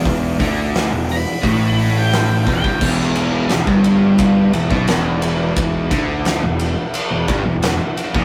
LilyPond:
<<
  \new Staff \with { instrumentName = "Lead electric guitar" } { \time 4/4 \key e \minor \tempo 4 = 87 r4. b''4 b''16 g''8. g''8 | r1 | r1 | }
  \new Staff \with { instrumentName = "Distorted electric guitar" } { \clef bass \time 4/4 \key e \minor e,8 d8. e,8 r16 a,4. e,16 g,16 | e,4 e,16 g,4~ g,16 e,16 b,16 e,4~ | e,8 d8. e,8 r8 e,16 g,16 e,8 r8 ais,16 | }
  \new Staff \with { instrumentName = "Distorted electric guitar" } { \clef bass \time 4/4 \key e \minor e,8 d8. e,8 r16 a,4. e,16 g,16 | e,4 e,16 g,4~ g,16 e,16 b,16 e,4~ | e,8 d8. e,8 r8 e,16 g,16 e,8 r8 ais,16 | }
  \new Staff \with { instrumentName = "Overdriven electric guitar" } { \clef bass \time 4/4 \key e \minor e,8 d8. e,8 r16 a,4. e,16 g,16 | e,4 e,16 g,4~ g,16 e,16 b,16 e,4~ | e,8 d8. e,8 r8 e,16 g,16 e,8 r8 ais,16 | }
  \new Staff \with { instrumentName = "Picked electric bass" } { \clef bass \time 4/4 \key e \minor e,,8 d,8. e,,8 r16 a,,4. e,,16 g,,16 | e,,4 e,,16 g,,4~ g,,16 e,,16 b,,16 e,,4~ | e,,8 d,8. e,,8 r8 e,,16 g,,16 e,,8 r8 ais,,16 | }
  \new DrumStaff \with { instrumentName = "Drums" } \drummode { \time 4/4 <hho bd>8 <hho bd>8 <hho sn>8 hho8 <hho bd>8 hho8 <hho sn>8 <hho bd>16 bd16 | <cymc bd>16 sn16 cymr8 <cymr sn>16 bd16 cymr8 <bd cymr>8 cymr16 bd16 <cymr sn>8 cymr8 | <bd cymr>8 <bd cymr>8 <cymr sn>8 cymr8 cymr8 <bd cymr>8 <cymr sn>8 cymr16 bd16 | }
>>